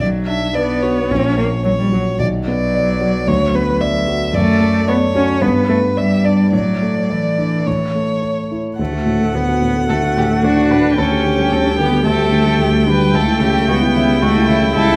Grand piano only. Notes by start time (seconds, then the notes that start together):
0.00 B1
0.27 D4
0.55 B4
0.83 F#4
1.11 A#1
1.38 C#4
1.65 C#5
1.92 F#4
2.20 B1
2.47 B3
2.74 D5
3.01 F#4
3.28 D2
3.54 B3
3.81 D5
4.07 F#4
4.33 F#2
4.61 A3
4.88 D5
5.15 F#4
5.42 G2
5.69 B3
5.97 D5
6.24 D4
6.52 A2
6.82 A3
7.10 D5
7.38 D4
7.67 A2
7.95 A3
8.22 C#5
8.51 E4
8.79 D2
8.93 F#4
9.06 A2
9.20 A3
9.34 D2
9.48 F#4
9.62 A2
9.76 A3
9.89 D2
10.03 F#4
10.17 A2
10.30 A3
10.43 D2
10.57 F#4
10.71 A2
10.84 A3
10.97 D2
11.11 G4
11.25 D3
11.38 G3
11.52 D2
11.65 G4
11.79 D3
11.92 G3
12.05 D2
12.19 G4
12.32 D3
12.44 G3
12.58 D2
12.72 G4
12.87 D3
13.00 G3
13.13 C#2
13.27 E4
13.40 C#3
13.54 G3
13.68 C#2
13.81 E4
13.95 C#3
14.08 G3
14.22 C#2
14.36 E4
14.49 C#3
14.63 G3
14.76 C#2
14.89 E4